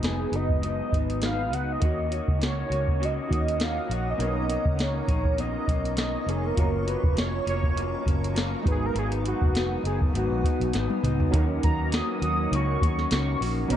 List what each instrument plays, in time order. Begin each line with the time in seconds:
Already playing: fingered electric bass F1, synth keys G#3 D#4 F#4 B4
0.01 clean electric guitar G#2 F#3 B3 D#4, soft synth lead G#4, snare, closed hi-hat
0.31 fingered electric bass F#1, clean electric guitar F#3 B3 D#4, closed hi-hat
0.35 soft synth lead D#5
0.50 kick
0.61 clean electric guitar G#2 F#3 B3 D#4, closed hi-hat
0.91 fingered electric bass G#1, clean electric guitar F#3 B3 D#4, kick, closed hi-hat
1.10 closed hi-hat
1.20 clean electric guitar G#2 F#3 B3 D#4, synth keys G#3 D#4 F#4 B4, snare, closed hi-hat
1.25 soft synth lead F5
1.51 fingered electric bass C#2, clean electric guitar F#3 B3 D#4, soft synth lead F#5, closed hi-hat
1.72 soft synth lead D#5
1.80 fingered electric bass D#2, clean electric guitar D#3 A#3 C#4 F#4, synth keys A#3 D#4 F#4, ambient pad C#5 F#5 A#5 D#6, kick, closed hi-hat
1.85 synth keys C#5
2.10 clean electric guitar A#3 C#4 F#4, closed hi-hat
2.28 fingered electric bass C#2, kick
2.39 clean electric guitar D#3 A#3 C#4 F#4, closed hi-hat
2.43 soft synth lead C#5, snare
2.69 fingered electric bass C#2, clean electric guitar A#3 C#4 F#4, closed hi-hat
2.88 kick
3.00 clean electric guitar D#3 A#3 C#4 F#4, closed hi-hat
3.05 soft synth lead D#5
3.28 fingered electric bass D#2, synth keys A#3 D#4 F#4 D#5, clean electric guitar A#3 C#4 F#4, kick
3.33 closed hi-hat
3.48 closed hi-hat
3.58 clean electric guitar D#3 A#3 C#4 F#4, snare, closed hi-hat
3.63 soft synth lead F5
3.88 fingered electric bass A#1, clean electric guitar A#3 C#4 F#4, closed hi-hat
3.93 soft synth lead F#5
4.10 soft synth lead D#5
4.18 fingered electric bass B1, clean electric guitar B2 D#3 A#3 C#4, synth keys B3 D#4 A#4, ambient pad B3 D#5 C#6, closed hi-hat
4.22 synth keys C#5
4.47 clean electric guitar D#3 A#3 C#4, closed hi-hat
4.66 fingered electric bass C#2, kick
4.76 clean electric guitar B2 D#3 A#3 C#4, closed hi-hat
4.80 soft synth lead C#5, snare
5.07 fingered electric bass A#1, clean electric guitar D#3 A#3 C#4, kick, closed hi-hat
5.25 kick
5.37 clean electric guitar B2 D#3 A#3 C#4, soft synth lead D#5, closed hi-hat
5.67 fingered electric bass B1, clean electric guitar D#3 A#3 C#4, kick, closed hi-hat
5.85 closed hi-hat
5.96 clean electric guitar B2 D#3 A#3 C#4, soft synth lead D#5, snare, closed hi-hat
6.25 fingered electric bass F1, clean electric guitar D#3 A#3 C#4, soft synth lead G#4, closed hi-hat
6.46 soft synth lead A#4
6.55 fingered electric bass F#1, clean electric guitar F#2 F3 A#3 C#4, synth keys A#3 F4 F#4, ambient pad A#4 F5 A#5, kick, closed hi-hat
6.59 synth keys C#5
6.85 clean electric guitar F3 A#3 C#4, soft synth lead B4, closed hi-hat
7.04 fingered electric bass F1, kick
7.15 clean electric guitar F#2 F3 A#3 C#4, soft synth lead C#5, snare, closed hi-hat
7.45 fingered electric bass F1, clean electric guitar F3 A#3 C#4, closed hi-hat
7.49 soft synth lead C#5
7.64 kick
7.74 clean electric guitar F#2 F3 A#3 C#4, closed hi-hat
8.03 fingered electric bass F#1, clean electric guitar F3 A#3 C#4, kick
8.08 closed hi-hat
8.24 closed hi-hat
8.33 clean electric guitar F#2 F3 A#3 C#4, closed hi-hat
8.38 snare
8.63 fingered electric bass G#1, synth keys G#3 D#4 F#4, clean electric guitar B3 D#4, ambient pad B4 F#5 G#5 D#6, kick
8.67 clean electric guitar F#3, synth keys B4, closed hi-hat
8.71 soft synth lead G#4
8.86 soft synth lead A#4
8.93 fingered electric bass G#1, clean electric guitar G#2 F#3 B3 D#4, closed hi-hat
8.99 soft synth lead G#4
9.12 closed hi-hat
9.23 clean electric guitar F#3 B3 D#4, closed hi-hat
9.28 soft synth lead F#4
9.41 fingered electric bass F1, kick
9.53 clean electric guitar G#2 F#3 B3 D#4, snare, closed hi-hat
9.83 fingered electric bass F#1, clean electric guitar F#3 B3 D#4, soft synth lead G#4, closed hi-hat
10.02 kick
10.13 fingered electric bass G#1, clean electric guitar G#2 F#3 B3 D#4, soft synth lead F#4, closed hi-hat
10.31 fingered electric bass A#1
10.43 clean electric guitar F#3 B3 D#4, kick, closed hi-hat
10.60 fingered electric bass B1, closed hi-hat
10.72 fingered electric bass G#1, clean electric guitar G#2 F#3 B3 D#4, snare, closed hi-hat
10.90 high tom
11.03 fingered electric bass C#2, clean electric guitar F#3 B3 D#4, closed hi-hat, mid tom
11.20 floor tom
11.31 fingered electric bass D#2, clean electric guitar D#3 A#3 C#4 F#4, synth keys F#3 A#3 C#4 D#4, kick, closed hi-hat
11.36 synth keys A#4
11.62 fingered electric bass D#2, clean electric guitar A#3 C#4 F#4, soft synth lead A#5, kick, closed hi-hat
11.92 clean electric guitar D#3 A#3 C#4 F#4, soft synth lead D#6, snare, closed hi-hat
12.21 fingered electric bass D#2, clean electric guitar A#3 C#4 F#4, closed hi-hat
12.51 fingered electric bass C#2, clean electric guitar D#3 A#3 C#4 F#4, soft synth lead C#6, closed hi-hat
12.81 fingered electric bass D#2, clean electric guitar A#3 C#4 F#4, kick, closed hi-hat
12.99 snare
13.11 fingered electric bass C#2, clean electric guitar D#3 A#3 C#4 F#4, soft synth lead C#6, snare, closed hi-hat
13.41 fingered electric bass A#1, clean electric guitar A#3 C#4 F#4, open hi-hat
13.68 fingered electric bass B1, clean electric guitar B2 D#3 A#3, synth keys F#3 B3 C#4 D#4, closed hi-hat
13.73 clean electric guitar C#4, synth keys A#4